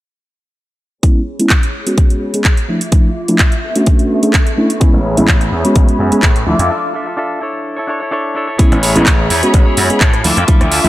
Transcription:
1.03 G#3 B3 C#4 E4 G#4 C#5 B5, kick, closed hi-hat
1.39 G#3 B3 C#4 E4, closed hi-hat
1.50 kick, clap, closed hi-hat
1.63 closed hi-hat
1.87 G#3 B3 C#4 F#4, closed hi-hat
1.98 kick, closed hi-hat
2.10 closed hi-hat
2.34 G#3 B3 C#4 G#4, closed hi-hat
2.44 kick, clap, closed hi-hat
2.57 closed hi-hat
2.68 F3 A3 D4 E4 F4 E5 D6
2.81 closed hi-hat
2.92 F3 A3 D4 E4, kick, closed hi-hat
3.28 F3 A3 D4 E4, closed hi-hat
3.39 kick, clap, closed hi-hat
3.52 closed hi-hat
3.63 B3 A4 C#6
3.75 A3 C#4 D4 F#4, closed hi-hat
3.86 kick, closed hi-hat
3.99 closed hi-hat
4.22 A3 C#4 D4 G#4, closed hi-hat
4.33 kick, clap, closed hi-hat
4.47 closed hi-hat
4.57 A3 C#4 D4 E4
4.70 closed hi-hat
4.80 G#3 B3 C#4 E4 G#4 B4 C#5 E5 B5, muted slap bass stroke, kick, closed hi-hat
4.93 A1
5.04 C#4 G#4 B4 E5
5.17 A1 G#3 B3 C#4 E4 G#4 B4 E5, closed hi-hat
5.28 C#4 G#4 E5, kick, clap, closed hi-hat
5.41 closed hi-hat
5.51 E2 C#4 G#4 B4 E5
5.65 G#3 B3 C#4 F#4, closed hi-hat
5.75 A1, kick, closed hi-hat
5.88 G#4 B4 E5, closed hi-hat
5.99 F#2 C#4 G#4 B4 E5
6.11 G#3 B3 C#4 G#4 B4 E5, muted slap bass stroke, closed hi-hat
6.23 A2 C#4 G#4 E5, kick, clap, closed hi-hat
6.36 closed hi-hat
6.46 D2 F3 A3 D4 E4 F4 A4 E5 D6
6.59 F2 F4 A4 E5, closed hi-hat
6.70 D4 F4 A4 E5
6.94 D4 F4 A4 E5
7.06 F4 A4 E5
7.17 D4 F4 A4 E5
7.41 D4 E4 A4 C#5
7.77 E4 A4 C#5
7.87 D4 E4 A4 C#5
8.00 E4 A4 C#5
8.11 D4 E4 A4 C#5
8.35 D4 E4 A4 C#5
8.47 E4 A4 C#5
8.58 G#3 B3 C#4 E4 G#4 C#5 B5, muted slap bass stroke, kick, closed hi-hat
8.72 A1, cross-stick, closed hi-hat
8.82 B3 E4 G#4 C#5, open hi-hat
8.95 A1 G#3 B3 C#4 E4 G#4 C#5, closed hi-hat
9.06 B3 E4 G#4 C#5, kick, clap, closed hi-hat
9.29 E2 B3 E4 G#4 C#5, open hi-hat
9.43 G#3 B3 C#4 F#4, closed hi-hat
9.54 A1, kick, closed hi-hat
9.66 E4 G#4 C#5
9.77 F#2, open hi-hat
9.90 G#3 B3 C#4 G#4, muted slap bass stroke, closed hi-hat
10.01 A2 B3 E4 G#4 C#5, kick, clap, closed hi-hat
10.13 E4 G#4 C#5, cross-stick, closed hi-hat
10.24 D2 F3 A3 D4 E4 F4 A4 E5 D6, open hi-hat
10.36 F2 A4 E5, cross-stick, closed hi-hat
10.47 F3 A3 D4 E4 F4 A4 E5, muted slap bass stroke, kick, closed hi-hat
10.61 D2, cross-stick, closed hi-hat
10.71 F4 A4 E5, open hi-hat
10.84 D2 F3 A3 D4 E4 E5, open hi-hat

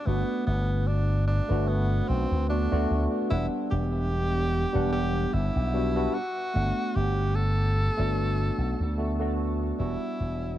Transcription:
0.05 G1 A3 B3 D4 F#4
0.46 G1 B3
0.87 D4
1.28 D4
1.49 G1 A3 D4 F#4 B4
1.68 B3
2.09 B1 C4
2.31 D2
2.49 A3 B3 D4 F#4
2.71 D2 A3 B3 D4 F#4
2.91 D2
3.29 E1 G3 B3 D4 E4 F#5
3.71 E1 G4
4.73 E1 G3 B3 D4 F#5
4.93 G4
5.33 G1 E4
5.56 B1
5.73 G3 B3 D4 F#4
5.95 G3 B3 D4 F#4
6.14 F#4
6.54 G1 A3 B3 D4 F#5
6.95 G1 G4
7.36 A4
7.97 G1 A3 B3 D4 F#4
8.58 B1
8.80 D2
8.97 A3 B3 D4 F#4
9.20 A3 B3 D4 F#4
9.78 E1 G3 B3 D4 E4 F#4
10.20 E1

